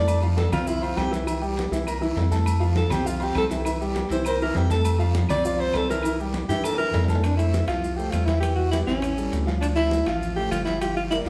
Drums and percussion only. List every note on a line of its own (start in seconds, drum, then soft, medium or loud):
0.08 high conga soft
0.08 low agogo loud
0.08 long guiro medium
0.08 claves medium
0.08 maracas medium
0.22 high conga soft
0.22 low agogo medium
0.22 maracas soft
0.37 high conga loud
0.37 low timbale medium
0.37 short guiro medium
0.37 maracas soft
0.52 high conga soft
0.52 low conga medium
0.52 low agogo loud
0.52 short guiro medium
0.52 claves medium
0.52 maracas medium
0.67 high conga soft
0.67 long guiro medium
0.67 maracas medium
0.83 high conga soft
0.83 low agogo medium
0.83 maracas soft
0.97 high conga medium
0.97 low timbale medium
0.97 low agogo loud
0.97 short guiro medium
0.97 claves medium
0.97 maracas soft
1.12 high conga soft
1.12 short guiro medium
1.12 maracas medium
1.27 high conga soft
1.27 low agogo loud
1.27 long guiro medium
1.27 claves medium
1.27 maracas medium
1.43 high conga soft
1.43 maracas soft
1.57 high conga loud
1.57 low timbale medium
1.57 low agogo medium
1.57 short guiro medium
1.57 maracas soft
1.72 short guiro medium
1.72 maracas medium
1.87 high conga soft
1.87 low agogo loud
1.87 long guiro medium
1.87 claves medium
1.87 maracas medium
2.02 high conga soft
2.02 maracas soft
2.16 high conga medium
2.16 low timbale medium
2.16 low agogo medium
2.16 short guiro medium
2.16 maracas soft
2.32 high conga medium
2.32 short guiro medium
2.32 maracas medium
2.45 high conga soft
2.45 low agogo loud
2.45 long guiro medium
2.45 claves medium
2.45 maracas loud
2.61 high conga soft
2.61 low agogo medium
2.61 maracas soft
2.76 high conga loud
2.76 low timbale medium
2.76 short guiro medium
2.76 maracas soft
2.90 high conga soft
2.90 low conga medium
2.90 low agogo loud
2.90 short guiro medium
2.90 claves medium
2.90 maracas medium
3.05 high conga soft
3.05 long guiro medium
3.05 maracas medium
3.20 high conga soft
3.20 low agogo medium
3.20 maracas soft
3.35 high conga medium
3.35 low timbale medium
3.35 low agogo loud
3.35 short guiro medium
3.35 claves medium
3.35 maracas soft
3.49 high conga soft
3.49 short guiro medium
3.49 maracas medium
3.64 high conga soft
3.64 low agogo loud
3.64 long guiro medium
3.64 claves medium
3.64 maracas medium
3.81 high conga soft
3.81 maracas soft
3.94 high conga loud
3.94 low timbale medium
3.94 low agogo medium
3.94 short guiro medium
3.94 maracas soft
4.09 short guiro medium
4.09 maracas medium
4.24 high conga soft
4.24 low agogo loud
4.24 long guiro medium
4.24 claves medium
4.24 maracas medium
4.40 high conga soft
4.40 maracas soft
4.54 high conga medium
4.54 low timbale medium
4.54 low agogo medium
4.54 short guiro medium
4.54 maracas soft
4.70 high conga medium
4.70 short guiro medium
4.70 maracas medium
4.84 high conga soft
4.84 low agogo loud
4.84 long guiro medium
4.84 claves medium
4.84 maracas medium
5.00 high conga soft
5.00 low agogo medium
5.00 maracas soft
5.15 high conga loud
5.15 low timbale medium
5.15 short guiro medium
5.15 maracas soft
5.29 high conga soft
5.29 low conga medium
5.29 low agogo loud
5.29 short guiro medium
5.29 claves medium
5.29 maracas medium
5.44 high conga soft
5.44 long guiro medium
5.44 maracas medium
5.59 high conga soft
5.59 low agogo medium
5.59 maracas soft
5.73 high conga medium
5.73 low timbale medium
5.73 low agogo loud
5.73 short guiro medium
5.73 claves medium
5.73 maracas soft
5.89 high conga soft
5.89 short guiro medium
5.89 maracas medium
6.03 high conga soft
6.03 low agogo loud
6.03 long guiro medium
6.03 claves medium
6.03 maracas medium
6.20 high conga soft
6.20 maracas soft
6.34 high conga loud
6.34 low timbale medium
6.34 low agogo medium
6.34 short guiro medium
6.34 maracas soft
6.49 short guiro medium
6.49 maracas medium
6.64 high conga soft
6.64 high timbale medium
6.64 low agogo loud
6.64 long guiro medium
6.64 claves medium
6.64 maracas medium
6.74 high timbale medium
6.79 high conga soft
6.79 maracas soft
6.94 high conga medium
6.94 low timbale loud
6.94 low agogo medium
6.94 short guiro medium
6.94 maracas soft
7.04 low timbale medium
7.08 high conga medium
7.08 short guiro medium
7.08 maracas medium
7.15 low timbale loud
7.24 high conga soft
7.24 high timbale medium
7.24 long guiro medium
7.24 claves medium
7.24 maracas medium
7.39 high conga soft
7.39 high timbale medium
7.39 maracas medium
7.53 high conga medium
7.53 short guiro medium
7.53 maracas medium
7.68 high conga soft
7.68 high timbale medium
7.68 short guiro medium
7.68 claves medium
7.68 maracas soft
7.83 high conga soft
7.83 long guiro medium
7.83 maracas medium
7.99 high conga soft
7.99 maracas medium
8.12 high conga medium
8.12 high timbale medium
8.12 low timbale medium
8.12 short guiro medium
8.12 claves medium
8.12 maracas medium
8.28 high conga medium
8.28 high timbale medium
8.28 short guiro medium
8.28 maracas soft
8.43 high conga soft
8.43 high timbale medium
8.43 long guiro medium
8.43 claves medium
8.43 maracas medium
8.59 high conga soft
8.73 high conga medium
8.73 high timbale medium
8.73 short guiro medium
8.73 maracas medium
8.87 high conga soft
8.87 short guiro medium
8.87 maracas soft
9.02 high conga soft
9.02 high timbale medium
9.02 long guiro medium
9.02 claves medium
9.02 maracas medium
9.18 high conga soft
9.18 maracas medium
9.31 high conga soft
9.31 high timbale medium
9.31 low timbale medium
9.31 short guiro medium
9.31 maracas medium
9.47 high conga medium
9.47 short guiro medium
9.47 maracas soft
9.62 high conga soft
9.62 high timbale medium
9.62 long guiro medium
9.62 claves medium
9.62 maracas medium
9.77 high conga soft
9.77 high timbale medium
9.91 high conga medium
9.91 short guiro medium
9.91 maracas medium
10.06 high conga soft
10.06 high timbale medium
10.06 short guiro medium
10.06 claves medium
10.06 maracas soft
10.21 high conga soft
10.21 long guiro medium
10.21 maracas medium
10.38 high conga soft
10.51 high conga medium
10.51 high timbale medium
10.51 short guiro medium
10.51 claves medium
10.51 maracas medium
10.66 high conga medium
10.66 high timbale medium
10.66 short guiro medium
10.66 maracas soft
10.81 high conga soft
10.81 high timbale medium
10.81 long guiro medium
10.81 claves medium
10.81 maracas medium
10.97 high conga soft
11.11 high conga medium
11.11 high timbale medium
11.11 short guiro medium
11.11 maracas medium
11.25 short guiro medium
11.25 maracas soft